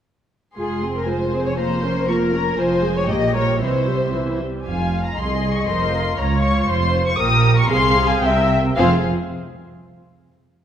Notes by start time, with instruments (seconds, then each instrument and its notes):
0.56 double bass section F1, cello section F2, viola section G#3 F4, violin section G#4 C6
0.82 viola section C4 G#4
0.97 violin section A#4
1.07 viola section G#3 F4, violin section C5 G#5
1.33 viola section C4 G#4
1.47 violin section C#5
1.57 viola section A#3 F4, violin section C5 A#5
1.83 viola section C#4 A#4, violin section C6
2.08 viola section A#3 F4, violin section A#4 C#6
2.33 viola section C#4 A#4, violin section A#5
2.58 double bass section F1, cello section F2, viola section F3 F4, violin section C5 G#5
2.83 viola section G#3 G#4
2.96 violin section C#5
3.08 double bass section A#1, cello section A#2, viola section A#3 G4, violin section D#5 G5
3.34 viola section G3 A#4, violin section C#5
3.60 double bass section C2, cello section C3, viola section E3 E4, violin section C5 E5
3.87 viola section G3 G4
4.13 viola section E3 E4
4.41 viola section G3 G4
4.66 double bass section F1, cello section F2, violin section F4 F5 G#5
5.06 violin section A#5
5.17 cello section C2, double bass section C2, viola section G#4, violin section G#4 D#5 C6
5.56 violin section C#6
5.68 double bass section F1, cello section F2, violin section A#4 C6, viola section C5
5.94 violin section F4, viola section A#4
6.18 double bass section C#2, cello section C#2, viola section C#5, violin section C#5 A#5
6.44 violin section C#6
6.62 violin section C#6
6.68 double bass section F1, cello section F2, violin section C5 C6, viola section C5
7.07 violin section C#6
7.19 double bass section A#1, cello section A#2, violin section G4 A#4 D#6, viola section A#4
7.58 violin section C#6
7.70 double bass section C2, cello section C3, viola section G#4, violin section G#4 F5 C6
8.10 violin section G#5
8.22 double bass section C2, cello section C3, violin section A#4 E5 G5, viola section E5
8.76 double bass section F1, cello section F2, viola section C4 F4, violin section G#4 C5 F5